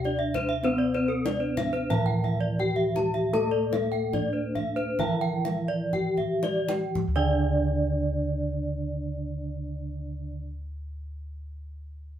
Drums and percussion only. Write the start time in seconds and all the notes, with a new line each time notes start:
0.04 kendang slap
0.34 kendang slap, kendang high, kendang low
0.49 kendang slap
0.64 kendang high
0.94 kendang slap
1.10 kendang slap
1.26 kendang slap, kendang high
1.57 kendang high, kendang low
1.74 kendang slap
1.90 kendang low
2.24 kendang slap
2.59 kendang slap
2.96 kendang slap, kendang high
3.14 kendang slap
3.34 kendang high
3.73 kendang slap, kendang high
3.93 kendang slap
4.13 kendang slap, kendang low
4.56 kendang slap, kendang low
4.77 kendang slap
4.99 kendang low
5.22 kendang slap
5.45 kendang slap, kendang high
5.93 kendang low
6.17 kendang low
6.43 kendang high
6.69 kendang high
6.95 kendang low